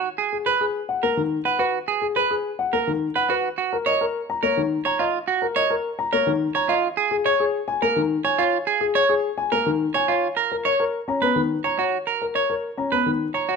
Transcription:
X:1
M:3/4
L:1/16
Q:1/4=106
K:G#dor
V:1 name="Grand piano"
z2 G B G z f A z2 f B | z2 G B G z f A z2 f B | z2 A d A z a c z2 a d | z2 A d A z a c z2 a d |
z2 G c G z g A z2 g c | z2 G c G z g A z2 g c | z2 A c A z a B z2 a c | z2 A c A z a B z2 a c |]
V:2 name="Clean electric guitar"
z G z B z3 A z2 B F | z G z B z3 A z2 B F | z F z c z3 A z2 c E | z F z c z3 A z2 c E |
z G z c z3 A z2 c E | z G z c z3 A z2 c E | z A z c z3 B z2 c F | z A z c z3 B z2 c F |]
V:3 name="Grand piano"
z6 z A, D, z3 | z6 z A, D, z3 | z6 z A, D, z3 | z6 z A, D, z3 |
z6 z A, D, z3 | z6 z A, D, z3 | z6 C B, D, z3 | z6 C B, D, z3 |]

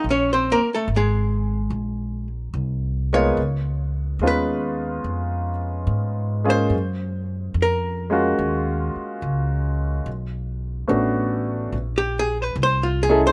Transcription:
X:1
M:4/4
L:1/16
Q:"Swing" 1/4=72
K:Bbm
V:1 name="Hollow-body jazz guitar"
[Dd] [Cc] [B,B] [=A,=A] [_A,_A]6 z4 d2- | d4 _c6 z4 =c2- | c4 B6 z6 | z8 z =G A _c =c F A c |]
V:2 name="Grand piano"
z12 z2 [A,B,_CEF]2 | z4 [A,_CDEF]6 z4 [A,B,DFA]2 | z6 [A,B,DFG]6 z4 | z4 [=A,_CD=DG]4 z6 [_DE_F_A=A]2 |]
V:3 name="Upright bass" clef=bass
B,,,2 z2 A,,,4 B,,,4 C,,4 | D,,4 E,,4 F,,4 A,,4 | G,,4 F,,4 E,,2 z2 D,,4 | _C,,4 =A,,,4 B,,,4 =C,,4 |]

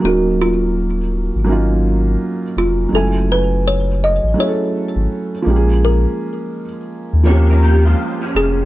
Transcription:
X:1
M:4/4
L:1/16
Q:"Swing 16ths" 1/4=83
K:Ebdor
V:1 name="Kalimba"
G2 F12 F2 | =A2 _c2 d2 e2 d8 | B8 z6 A2 |]
V:2 name="Clean electric guitar"
z16 | z16 | z8 [Fd] [DB] [B,=G] [A,F]2 [F,D]3 |]
V:3 name="Felt piano"
[G,B,DEB]4- [G,B,DEB] z3 [G,B,DEF]4- [G,B,DEF] z3 | [G,A,=A,D_F_a]4- [G,_A,=A,DF_a] z3 [G,=A,DF_A=A]4- [G,A,DF_A=A] z [=F,_A,B,D=G_A]2- | [F,A,B,D=GA]4 z4 [F,B,CDG]4- [F,B,CDG] z3 |]
V:4 name="Sub bass" clef=bass
E,,,6- E,,, A,,,4- A,,, z2 F,,,2 | G,,,6- G,,, =A,,, z3 _A,,, z2 B,,,2- | B,,,2 z4 z E,,4- E,, z2 F,,,2 |]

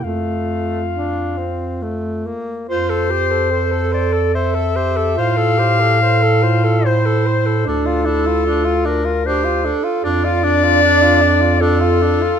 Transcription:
X:1
M:3/4
L:1/16
Q:1/4=72
K:F
V:1 name="Clarinet"
f8- f2 z2 | c6 d2 e4 | f8 c4 | A6 B2 c2 z2 |
d8 A4 |]
V:2 name="Alto saxophone"
F8- F2 z2 | F2 G2 A4 A2 G2 | F2 G2 A2 F2 E4 | D2 E2 F2 z2 G2 A2 |
F2 D6 F4 |]
V:3 name="Tenor saxophone"
A,4 D2 C2 A,2 B,2 | c A c A c A c A c A c A | c A c A c A c A c A c A | D F D F D F D F D F D F |
D F D F D F D F D F D F |]
V:4 name="Bass clarinet" clef=bass
F,,8- F,,2 z2 | F,,12 | A,,12 | D,,8- D,,2 z2 |
F,,12 |]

